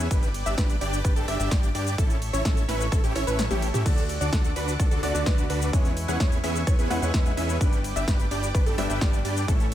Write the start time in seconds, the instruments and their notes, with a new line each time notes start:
Already playing: analog synth pad B4
0.11 analog synth bass G1, supersaw synth D4 G4 B4, synth pluck B4, analog synth pad D5 G5 D6, kick, closed hi-hat, ride, cabasa
0.23 closed hi-hat, cabasa
0.34 open hi-hat, ride
0.46 analog synth bass G1, supersaw synth D4 G4 E5, synth pluck E5, closed hi-hat, cabasa
0.58 analog synth bass G1, supersaw synth D4 G4 B4, synth pluck B4, kick, snare, closed hi-hat, ride, cabasa
0.70 closed hi-hat, cabasa
0.81 analog synth bass G1, supersaw synth D4 G4 D5, synth pluck D5, open hi-hat, ride
0.93 closed hi-hat, cabasa
1.04 analog synth bass G1, supersaw synth D4 G4 B4, synth pluck B4, kick, cross-stick, closed hi-hat, ride, cabasa
1.16 analog synth bass G1, supersaw synth D4 G4 A4, synth pluck A4, closed hi-hat, cabasa
1.28 analog synth bass G1, supersaw synth D4 G4 E5, synth pluck E5, cross-stick, open hi-hat, ride
1.40 analog synth bass G1, supersaw synth D4 G4 E5, synth pluck E5, closed hi-hat, cabasa
1.51 analog synth bass G1, supersaw synth D4 G4 D5, synth pluck D5, kick, snare, closed hi-hat, ride, cabasa
1.63 closed hi-hat, cabasa
1.75 analog synth bass G2, supersaw synth D4 G4 D5, synth pluck D5, open hi-hat, ride
1.87 closed hi-hat, cabasa
1.98 analog synth bass A1, supersaw synth C#4 E4 A4, synth pluck A4, analog synth pad A4 C#5 E5 C#6, kick, closed hi-hat, ride, cabasa
2.10 closed hi-hat, cabasa
2.22 open hi-hat, ride
2.33 analog synth bass A1, supersaw synth C#4 E4 C#5, synth pluck C#5, closed hi-hat, cabasa
2.45 analog synth bass A1, supersaw synth C#4 E4 A4, synth pluck A4, kick, snare, closed hi-hat, ride, cabasa
2.57 closed hi-hat, cabasa
2.68 analog synth bass A1, supersaw synth C#4 E4 B4, synth pluck B4, snare, open hi-hat, ride
2.80 closed hi-hat, cabasa
2.92 analog synth bass A1, supersaw synth C#4 E4 A4, synth pluck A4, kick, cross-stick, closed hi-hat, ride, cabasa
3.04 analog synth bass A1, supersaw synth C#4 E4 G4, synth pluck G4, closed hi-hat, cabasa
3.15 analog synth bass A1, supersaw synth C#4 E4 C#5, synth pluck C#5, cross-stick, open hi-hat, ride
3.27 analog synth bass A1, supersaw synth C#4 E4 B4, synth pluck B4, closed hi-hat, cabasa
3.39 snare, closed hi-hat, high tom, ride, cabasa
3.51 analog synth bass A1, supersaw synth C#4 E4 G4, synth pluck G4, closed hi-hat, high tom, cabasa
3.62 open hi-hat, ride
3.74 analog synth bass A2, supersaw synth C#4 E4 G4, synth pluck G4, closed hi-hat, mid tom, cabasa
3.85 analog synth bass D2, grand piano D3 A3 D4 F#4 D5, supersaw synth D4 F#4 A4, synth pluck A4, analog synth pad D5 F#5 D6, kick, closed hi-hat, crash, ride, cabasa
3.98 closed hi-hat, cabasa
4.09 open hi-hat, ride
4.21 analog synth bass D2, supersaw synth D4 F#4 D5, synth pluck D5, closed hi-hat, cabasa
4.33 analog synth bass D2, supersaw synth D4 F#4 A4, synth pluck A4, kick, snare, closed hi-hat, ride, cabasa
4.44 closed hi-hat, cabasa
4.56 analog synth bass D2, supersaw synth D4 F#4 B4, synth pluck B4, open hi-hat, ride
4.68 closed hi-hat, cabasa
4.79 analog synth bass D2, supersaw synth D4 F#4 A4, synth pluck A4, kick, cross-stick, closed hi-hat, ride, cabasa
4.91 analog synth bass D2, supersaw synth D4 F#4 A4, synth pluck A4, closed hi-hat, cabasa
5.02 analog synth bass D2, grand piano D3 A3 D4 F#4 D5, supersaw synth D4 F#4 D5, synth pluck D5, cross-stick, open hi-hat, ride
5.13 analog synth bass D2, grand piano D3 A3 D4 F#4 D5, supersaw synth D4 F#4 D5, synth pluck D5, closed hi-hat, cabasa
5.26 analog synth bass D2, supersaw synth D4 F#4 B4, synth pluck B4, kick, snare, closed hi-hat, ride, cabasa
5.38 closed hi-hat, cabasa
5.50 analog synth bass D2, supersaw synth D4 F#4 B4, synth pluck B4, open hi-hat, ride
5.62 closed hi-hat, cabasa
5.72 analog synth bass E2, grand piano G#3 C#4 E4 B4, supersaw synth B3 C#4 E4 G#4 C#5, analog synth pad B4 E5 G#5 C#6, synth pluck C#5, kick, closed hi-hat, ride, cabasa
5.85 closed hi-hat, cabasa
5.97 open hi-hat, ride
6.08 analog synth bass E2, supersaw synth B3 C#4 E4 G#4 F#5, synth pluck F#5, closed hi-hat, cabasa
6.20 analog synth bass E2, supersaw synth B3 C#4 E4 G#4 C#5, synth pluck C#5, kick, snare, closed hi-hat, ride, cabasa
6.32 closed hi-hat, cabasa
6.43 analog synth bass E2, supersaw synth B3 C#4 E4 G#4 E5, synth pluck E5, snare, open hi-hat, ride
6.55 closed hi-hat, cabasa
6.67 analog synth bass E2, supersaw synth B3 C#4 E4 G#4 C#5, synth pluck C#5, kick, cross-stick, closed hi-hat, ride, cabasa
6.79 analog synth bass E2, supersaw synth B3 C#4 E4 G#4 B4, synth pluck B4, closed hi-hat, cabasa
6.90 analog synth bass E2, grand piano G#3 C#4 E4 B4, supersaw synth B3 C#4 E4 G#4 F#5, synth pluck F#5, cross-stick, open hi-hat, ride
7.01 analog synth bass E2, grand piano G#3 C#4 E4 B4, supersaw synth B3 C#4 E4 G#4 F#5, synth pluck F#5, closed hi-hat, cabasa
7.14 analog synth bass E2, supersaw synth B3 C#4 E4 G#4 E5, synth pluck E5, kick, snare, closed hi-hat, ride, cabasa
7.26 closed hi-hat, cabasa
7.37 analog synth bass E2, supersaw synth B3 C#4 E4 G#4 E5, synth pluck E5, open hi-hat, ride
7.49 closed hi-hat, cabasa
7.60 analog synth bass G1, grand piano G2 G3 B3 D4 B4, supersaw synth D4 G4 B4, synth pluck B4, analog synth pad D5 G5 D6, kick, closed hi-hat, ride, cabasa
7.73 closed hi-hat, cabasa
7.84 open hi-hat, ride
7.96 analog synth bass G1, supersaw synth D4 G4 E5, synth pluck E5, closed hi-hat, cabasa
8.08 analog synth bass G1, supersaw synth D4 G4 B4, synth pluck B4, kick, snare, closed hi-hat, ride, cabasa
8.19 closed hi-hat, cabasa
8.31 analog synth bass G1, supersaw synth D4 G4 D5, synth pluck D5, open hi-hat, ride
8.43 closed hi-hat, cabasa
8.54 analog synth bass G1, supersaw synth D4 G4 B4, synth pluck B4, kick, cross-stick, closed hi-hat, ride, cabasa
8.66 analog synth bass G1, supersaw synth D4 G4 A4, synth pluck A4, closed hi-hat, cabasa
8.77 analog synth bass G1, grand piano G2 G3 B3 D4 B4, supersaw synth D4 G4 E5, synth pluck E5, cross-stick, open hi-hat, ride
8.88 analog synth bass G1, grand piano G2 G3 B3 D4 B4, supersaw synth D4 G4 E5, synth pluck E5, closed hi-hat, cabasa
9.01 analog synth bass G1, supersaw synth D4 G4 D5, synth pluck D5, kick, snare, closed hi-hat, ride, cabasa
9.13 closed hi-hat, cabasa
9.25 analog synth bass G2, supersaw synth D4 G4 D5, synth pluck D5, open hi-hat, ride
9.37 closed hi-hat, cabasa
9.47 analog synth bass A1, grand piano A2 E3 A3 C#4 A4, supersaw synth C#4 E4 A4, synth pluck A4, analog synth pad A4 C#5 E5 C#6, kick, closed hi-hat, ride, cabasa
9.60 closed hi-hat, cabasa